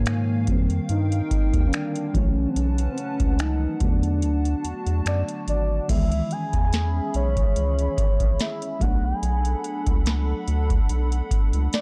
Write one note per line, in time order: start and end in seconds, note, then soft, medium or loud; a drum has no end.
0.00 0.49 G#2 medium
0.00 0.47 C#3 medium
0.00 2.12 D#3 medium
0.00 0.48 F3 medium
0.00 0.48 G#3 medium
0.00 0.44 A#3 loud
0.00 0.48 A#3 medium
0.00 0.47 C#5 medium
0.00 2.12 F5 medium
0.00 0.47 G#5 medium
0.06 finger snap loud
0.06 closed hi-hat medium
0.46 0.80 F2 loud
0.46 2.10 D#3 medium
0.46 2.11 G3 medium
0.46 2.12 A#3 medium
0.46 2.13 A#4 medium
0.46 2.13 G5 medium
0.46 kick loud
0.46 closed hi-hat medium
0.51 2.13 C4 medium
0.70 closed hi-hat soft
0.89 1.22 G2 loud
0.89 1.63 D#4 loud
0.89 closed hi-hat medium
1.12 closed hi-hat soft
1.31 kick medium
1.31 closed hi-hat medium
1.53 1.68 D#2 medium
1.53 kick medium
1.53 closed hi-hat soft
1.67 1.75 C#4 medium
1.73 2.16 D4 loud
1.73 finger snap loud
1.73 closed hi-hat medium
1.95 closed hi-hat medium
2.13 2.47 B1 loud
2.13 3.77 E3 medium
2.13 3.78 F#3 medium
2.13 3.79 A3 medium
2.13 3.79 C#4 medium
2.13 2.49 C#4 loud
2.13 3.80 B4 medium
2.13 5.86 F#5 medium
2.13 3.80 A5 medium
2.13 kick loud
2.13 closed hi-hat medium
2.18 3.79 C#4 medium
2.50 2.58 C4 medium
2.56 2.88 B1 loud
2.56 2.91 C#4 loud
2.56 closed hi-hat medium
2.78 closed hi-hat medium
2.92 3.00 C4 medium
2.98 3.41 C#4 medium
2.98 closed hi-hat medium
3.20 3.67 C#2 medium
3.20 kick medium
3.20 closed hi-hat soft
3.39 3.83 D#4 loud
3.39 finger snap loud
3.39 closed hi-hat medium
3.80 4.24 E2 loud
3.80 5.85 D3 medium
3.80 5.86 F#3 medium
3.80 5.86 A3 medium
3.80 5.87 D4 medium
3.80 4.65 D4 loud
3.80 5.87 F#4 medium
3.80 5.87 A5 medium
3.80 kick loud
3.80 closed hi-hat medium
3.84 5.87 B3 medium
4.03 closed hi-hat soft
4.22 4.55 D2 medium
4.22 closed hi-hat medium
4.45 closed hi-hat soft
4.64 4.73 E2 soft
4.64 closed hi-hat medium
4.87 5.02 E2 medium
4.87 closed hi-hat soft
5.06 5.23 F#2 medium
5.06 5.21 D5 medium
5.06 finger snap loud
5.06 closed hi-hat medium
5.29 closed hi-hat medium
5.48 5.80 G#1 medium
5.48 5.87 D5 medium
5.48 closed hi-hat medium
5.88 6.22 C#2 loud
5.88 5.91 D#3 medium
5.88 8.77 G#3 medium
5.88 8.78 B3 medium
5.88 8.79 C#4 medium
5.88 8.78 G#4 medium
5.88 8.78 E5 medium
5.88 6.34 E5 loud
5.88 8.78 B5 medium
5.88 kick loud
5.88 closed hi-hat medium
5.88 crash medium
5.93 8.79 D#3 medium
5.93 8.80 E3 medium
6.12 closed hi-hat medium
6.31 7.15 G#5 loud
6.31 closed hi-hat soft
6.53 7.01 E2 medium
6.53 kick medium
6.53 closed hi-hat soft
6.73 snare loud
6.73 closed hi-hat medium
7.14 7.47 B1 medium
7.14 8.42 C#5 loud
7.14 closed hi-hat medium
7.37 kick medium
7.37 closed hi-hat soft
7.56 7.88 C#2 medium
7.56 closed hi-hat medium
7.79 closed hi-hat medium
7.98 kick medium
7.98 closed hi-hat medium
8.20 8.35 A#1 medium
8.20 kick medium
8.20 closed hi-hat soft
8.40 8.83 E5 medium
8.40 snare loud
8.40 closed hi-hat medium
8.62 closed hi-hat medium
8.80 9.13 B1 loud
8.80 11.81 F#3 medium
8.80 11.81 A3 medium
8.80 11.81 B3 medium
8.80 11.81 D4 medium
8.80 11.81 A4 medium
8.80 11.81 F#5 medium
8.80 9.06 F#5 medium
8.80 11.81 B5 medium
8.80 kick loud
8.80 closed hi-hat medium
8.84 11.81 D4 medium
9.05 9.87 G#5 loud
9.23 9.55 B1 loud
9.23 closed hi-hat medium
9.45 closed hi-hat medium
9.64 closed hi-hat medium
9.86 10.34 C#2 medium
9.86 kick medium
9.86 closed hi-hat soft
10.06 snare loud
10.06 closed hi-hat medium
10.48 10.80 D2 loud
10.48 closed hi-hat medium
10.70 kick medium
10.70 closed hi-hat soft
10.89 11.22 B1 medium
10.89 closed hi-hat medium
11.12 closed hi-hat soft
11.31 kick medium
11.31 closed hi-hat medium
11.53 11.68 C#2 medium
11.53 closed hi-hat soft
11.73 11.81 D5 medium
11.73 snare loud
11.73 closed hi-hat medium